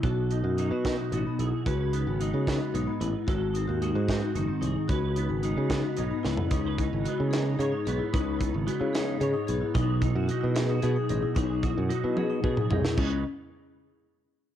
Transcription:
<<
  \new Staff \with { instrumentName = "Vibraphone" } { \time 6/8 \key cis \minor \tempo 4. = 74 fis'8 dis'16 fis'16 dis'16 fis'16 dis'16 fis'16 dis'16 b16 e'8 | fis'8 dis'16 fis'16 dis'16 fis'16 dis'16 fis'16 dis'16 b16 e'8 | fis'8 dis'16 fis'16 dis'16 fis'16 dis'16 fis'16 dis'16 bis16 dis'8 | fis'8 dis'16 fis'16 dis'16 fis'16 dis'16 fis'16 dis'16 b16 e'8 |
dis'8 e'8 fis'16 e'16 gis'16 dis'16 gis'16 dis'16 gis'16 e'16 | dis'8 e'8 fis'16 e'16 gis'16 dis'16 gis'16 dis'16 gis'16 e'16 | dis'8 e'8 fis'16 e'16 gis'16 dis'16 gis'16 dis'16 gis'16 e'16 | dis'8 e'8 fis'16 e'16 gis'16 dis'16 gis'16 dis'16 gis'16 e'16 |
cis'8 r2 r8 | }
  \new Staff \with { instrumentName = "Clean electric guitar" } { \time 6/8 \key cis \minor << { a'8 dis'8 dis'16 fis'16 dis'8 fis'8 gis'8 | b'8 b8 dis'8 b8 dis'8 b'8 | a'8 bis8 fis'8 bis8 fis'8 gis'8 | b'8 b8 dis'8 b8 dis'8 b'8 |
gis'16 b'16 dis'8 b8 dis'8 cis''8 b8 | b'8 dis'8 b8 dis'8 cis''8 b8 | gis'8 dis'16 fis'16 dis'8 dis'16 fis'16 gis'8 dis'8 | gis'8 fis'8 dis'8 fis'8 gis'8 dis'8 |
<gis b dis' b'>8 r2 r8 | } \\ { b,4 fis4 b,4 | cis4 gis4 gis,4 | gis,4 gis4 dis4 | cis4 gis4 gis,4 |
cis4 gis4 gis,4 | cis4 gis4 gis,4 | b,4 fis4 b,4 | b,4 fis4 b,4 |
cis8 r2 r8 | } >> }
  \new Staff \with { instrumentName = "Fingered electric bass" } { \clef bass \time 6/8 \key cis \minor b,,8. fis,8 b,8 r16 a,,16 r16 b,,16 r16 | cis,8. gis,,8 cis8 r16 b,,16 r16 a,,16 r16 | gis,,8. dis,8 gis,8 r16 fis,,16 r16 bis,,16 r16 | cis,8. gis,,8 cis8 r16 b,,16 r16 cis,16 r16 |
cis,8. gis,,16 r16 cis8. cis16 r16 b,,16 r16 | cis,8. gis,,16 r16 cis8. cis16 r16 b,,16 r16 | b,,8. fis,16 r16 b,8. b,16 r16 a,,16 r16 | b,,8. fis,16 r16 b,8. b,16 r16 bis,,16 r16 |
cis,8 r2 r8 | }
  \new DrumStaff \with { instrumentName = "Drums" } \drummode { \time 6/8 <hh bd>8 hh8 hh8 <hh bd sn>8 hh8 hh8 | <hh bd>8 hh8 hh8 <hh bd sn>8 hh8 hh8 | <hh bd>8 hh8 hh8 <hh bd sn>8 hh8 hh8 | <hh bd>8 hh8 hh8 <hh bd sn>8 hh8 sn16 tomfh16 |
<hh bd>8 <hh bd>8 hh8 <hh sn>8 hh8 hh8 | <hh bd>8 <hh bd>8 hh8 <hh sn>8 hh8 hh8 | <hh bd>8 <hh bd>8 hh8 <hh sn>8 hh8 hh8 | <hh bd>8 <hh bd>8 hh8 tommh8 bd16 toml16 tomfh16 sn16 |
<cymc bd>4. r4. | }
>>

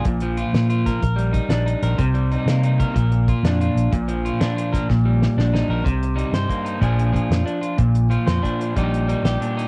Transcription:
<<
  \new Staff \with { instrumentName = "Clean electric guitar" } { \time 12/8 \key bes \mixolydian \tempo 4. = 124 << { r4 f'4 f'8 bes'8 r4 ees'8 d'8 ees'8 bes'8 | r4 ees'8 bes8 ees'8 bes'8 r4 f'8 d'8 f'4 | r4 f'8 d'8 f'8 bes'8 r4. d'8 ees'8 bes'8 | r4 ees'8 c''8 bes8 ees'8 <f d' f' aes'>4 f'4 d'8 f'8 |
r4 f'8 c''8 d'8 f'8 <g d' ees' g'>4 ees'8 g'8 d'8 ees'8 | } \\ { <bes, f>8 f2~ f8 r8 g2~ g8 | c8 g2~ g8 bes,2. | bes,8 f2~ f8 bes,8 g2~ g8 | c4 g4 g,4 bes,4 f2 |
bes,4 f4 bes,4 bes,4 g4 bes,4 | } >> }
  \new Staff \with { instrumentName = "Fingered electric bass" } { \clef bass \time 12/8 \key bes \mixolydian bes,,4. bes,4. bes,,4. bes,,4 bes,,8 | c,4. c4. bes,,4. f,4 bes,,8 | bes,,4. bes,4. bes,,4. bes,,4 bes,,8 | c,4. g,8 r4 bes,,4. f,8 r4 |
bes,,4. f,8 r4 bes,,4. bes,,8 r4 | }
  \new DrumStaff \with { instrumentName = "Drums" } \drummode { \time 12/8 <hh bd>8 hh8 hh8 <hh sn>8 hh8 <hh bd sn>8 <hh bd>8 hh8 <hh bd>8 <hh sn>8 hh8 hh8 | <hh bd>8 hh8 hh8 <hh sn>8 hh8 <hh bd>8 <hh bd>8 hh8 <hh bd>8 <hh sn>8 hh8 hh8 | <hh bd>8 hh8 hh8 <hh sn>8 hh8 <hh bd sn>8 <bd sn>4 sn8 sn8 sn4 | <hh bd>8 hh8 hh8 <hh sn>8 <hh bd>8 hh8 <hh bd>8 hh8 <hh bd>8 <hh sn>8 hh8 hh8 |
<hh bd>8 hh8 hh8 <hh sn>8 <hh bd>8 hh8 <hh bd>8 hh8 hh8 <hh sn>8 hh8 hh8 | }
>>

